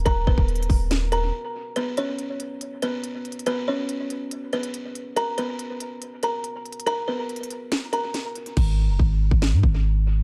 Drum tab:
CC |------------------------------------------------|------------------------------------------------|------------------------------------------------|------------------------------------------------|
HH |x-----------x-x-x-o-----x-----x-----------------|x-----x-----x-----x-----x-----x-----x-----x-x-x-|x-----------x-----x-----x-----x--x--x-----x-----|x-----x-----x-----x-----x-----x-----x-----x-x-x-|
SD |------------------------o-----------------------|------------------------------------------------|------------------------------------------------|------------------------------------------------|
BD |o-----o--o--------o-----------------------------|------------------------------------------------|------------------------------------------------|------------------------------------------------|

CC |------------------------------------------------|x-----------------------------------------------|
HH |x-----------x-x-x-x-----x-----x-----x-----x--x--|------------------------------------------------|
SD |------------------------o-----------o-----------|------------------------o-----------------------|
BD |------------------------------------------------|o-----------o--------o--------o-----------------|